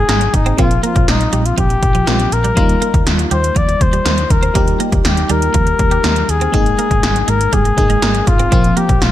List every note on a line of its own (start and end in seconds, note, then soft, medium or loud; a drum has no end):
0.00 0.54 G#3 medium
0.00 0.54 A#3 medium
0.00 0.55 D#4 medium
0.00 0.36 G#4 loud
0.00 0.55 G#4 medium
0.09 0.27 G#1 medium
0.09 0.19 A#3 medium
0.09 snare loud
0.09 closed hi-hat medium
0.21 muted clean electric guitar stroke soft
0.21 closed hi-hat soft
0.34 0.52 G#1 medium
0.34 0.59 D#4 medium
0.34 kick medium
0.34 closed hi-hat medium
0.46 0.56 C4 medium
0.46 closed hi-hat soft
0.57 0.76 A#1 medium
0.57 2.04 F3 medium
0.57 2.04 A#3 medium
0.57 0.69 C4 medium
0.57 2.05 C4 medium
0.57 0.82 F4 medium
0.57 2.05 F4 medium
0.57 kick loud
0.57 closed hi-hat medium
0.71 closed hi-hat soft
0.83 0.94 A#3 medium
0.83 1.07 F4 medium
0.83 closed hi-hat medium
0.96 1.05 A#1 medium
0.96 muted clean electric guitar stroke soft
0.96 kick medium
0.96 closed hi-hat soft
1.08 1.26 A#1 medium
1.08 1.47 D#4 medium
1.08 snare loud
1.08 closed hi-hat medium
1.21 closed hi-hat soft
1.33 1.51 A#1 medium
1.33 1.43 G3 medium
1.33 closed hi-hat medium
1.46 1.58 F4 medium
1.46 closed hi-hat medium
1.58 1.76 A#1 medium
1.58 1.68 F3 medium
1.58 2.34 G4 medium
1.58 kick medium
1.58 closed hi-hat medium
1.70 muted clean electric guitar stroke soft
1.70 closed hi-hat soft
1.83 2.00 A#1 medium
1.83 kick medium
1.83 closed hi-hat medium
1.95 2.05 F3 medium
1.95 closed hi-hat soft
2.06 2.25 A#1 medium
2.06 2.56 F3 soft
2.06 2.55 A#3 soft
2.06 2.18 A#3 medium
2.06 2.57 C4 soft
2.06 2.57 F4 soft
2.06 snare loud
2.06 closed hi-hat medium
2.20 muted clean electric guitar stroke soft
2.20 closed hi-hat soft
2.32 2.50 A#1 medium
2.32 3.07 A#4 medium
2.32 closed hi-hat medium
2.44 2.55 G3 medium
2.44 closed hi-hat soft
2.56 2.75 D#2 loud
2.56 4.51 G3 medium
2.56 4.51 A#3 medium
2.56 2.67 C4 medium
2.56 4.51 D#4 medium
2.56 4.52 F4 medium
2.56 kick loud
2.56 closed hi-hat medium
2.69 closed hi-hat soft
2.82 2.92 A#3 medium
2.82 closed hi-hat medium
2.94 3.03 D#2 medium
2.94 muted clean electric guitar stroke soft
2.94 kick medium
2.94 closed hi-hat soft
3.06 3.24 D#2 medium
3.06 snare medium
3.06 closed hi-hat medium
3.19 closed hi-hat medium
3.31 3.49 D#2 medium
3.31 3.42 G3 medium
3.31 3.59 C5 medium
3.31 closed hi-hat medium
3.44 closed hi-hat medium
3.56 3.74 D#2 medium
3.56 3.66 F3 medium
3.56 3.83 D5 loud
3.56 kick medium
3.56 closed hi-hat medium
3.69 muted clean electric guitar stroke soft
3.69 closed hi-hat soft
3.81 3.99 D#2 medium
3.81 4.33 C5 medium
3.81 kick medium
3.81 closed hi-hat medium
3.93 4.04 G3 medium
3.93 closed hi-hat soft
4.05 4.23 D#2 medium
4.05 4.16 A#3 medium
4.05 snare loud
4.05 closed hi-hat medium
4.18 muted clean electric guitar stroke soft
4.18 closed hi-hat medium
4.30 4.48 D#2 medium
4.30 4.80 A#4 medium
4.30 kick medium
4.30 closed hi-hat medium
4.43 4.53 C4 medium
4.43 closed hi-hat soft
4.54 4.73 D#2 loud
4.54 6.49 G3 medium
4.54 6.49 A#3 medium
4.54 4.66 C4 medium
4.54 6.50 D#4 medium
4.54 6.50 G4 medium
4.54 kick loud
4.54 closed hi-hat medium
4.68 closed hi-hat soft
4.80 4.90 A#3 medium
4.80 closed hi-hat medium
4.92 5.01 D#2 medium
4.92 muted clean electric guitar stroke soft
4.92 kick medium
4.92 closed hi-hat soft
5.05 5.23 D#2 medium
5.05 5.32 G4 medium
5.05 snare medium
5.05 closed hi-hat medium
5.17 closed hi-hat medium
5.29 5.47 D#2 medium
5.29 5.40 G3 medium
5.29 6.31 A#4 medium
5.29 closed hi-hat medium
5.42 closed hi-hat medium
5.54 5.72 D#2 loud
5.54 5.65 F3 medium
5.54 kick medium
5.54 closed hi-hat medium
5.67 muted clean electric guitar stroke soft
5.67 closed hi-hat soft
5.79 5.97 D#2 medium
5.79 kick medium
5.79 closed hi-hat medium
5.91 6.02 G3 medium
5.91 closed hi-hat soft
6.04 6.22 D#2 medium
6.04 6.14 A#3 medium
6.04 snare loud
6.04 closed hi-hat medium
6.16 muted clean electric guitar stroke soft
6.16 closed hi-hat medium
6.29 6.47 D#2 medium
6.29 7.30 G#4 loud
6.29 closed hi-hat medium
6.41 6.52 C4 medium
6.41 closed hi-hat soft
6.52 6.71 G#1 loud
6.52 7.74 G#3 medium
6.52 7.75 A#3 medium
6.52 6.64 C4 medium
6.52 7.75 D#4 medium
6.52 7.76 G#4 medium
6.52 kick loud
6.52 closed hi-hat medium
6.66 closed hi-hat soft
6.79 6.89 A#3 medium
6.79 closed hi-hat medium
6.91 7.00 G#1 medium
6.91 muted clean electric guitar stroke soft
6.91 kick medium
6.91 closed hi-hat soft
7.03 7.21 G#1 medium
7.03 snare medium
7.03 closed hi-hat medium
7.16 closed hi-hat medium
7.28 7.46 G#1 loud
7.28 7.38 G#3 medium
7.28 7.55 A#4 medium
7.28 closed hi-hat medium
7.41 closed hi-hat medium
7.53 7.71 G#1 medium
7.53 7.63 G3 medium
7.53 8.29 G#4 medium
7.53 kick medium
7.53 closed hi-hat medium
7.65 muted clean electric guitar stroke soft
7.65 closed hi-hat soft
7.77 7.96 G#1 medium
7.77 8.51 G#3 soft
7.77 8.50 A#3 soft
7.77 8.52 D#4 soft
7.77 8.52 G#4 soft
7.77 kick medium
7.77 closed hi-hat medium
7.90 8.00 G#3 medium
7.90 closed hi-hat soft
8.02 8.20 G#1 medium
8.02 8.13 A#3 medium
8.02 snare loud
8.02 closed hi-hat medium
8.15 muted clean electric guitar stroke soft
8.15 closed hi-hat soft
8.27 8.45 G#1 medium
8.27 8.79 F4 medium
8.27 kick medium
8.27 closed hi-hat medium
8.39 8.50 C4 medium
8.39 closed hi-hat soft
8.51 8.70 A#1 loud
8.51 9.12 F3 medium
8.51 9.12 A#3 medium
8.51 8.62 C4 medium
8.51 9.12 C4 medium
8.51 9.12 F4 medium
8.51 kick loud
8.51 closed hi-hat medium
8.64 closed hi-hat soft
8.77 8.87 A#3 medium
8.77 9.04 G4 medium
8.77 closed hi-hat medium
8.89 8.98 A#1 medium
8.89 muted clean electric guitar stroke soft
8.89 kick medium
8.89 closed hi-hat soft
9.01 9.12 A#1 medium
9.01 9.12 F4 medium
9.01 snare loud
9.01 closed hi-hat medium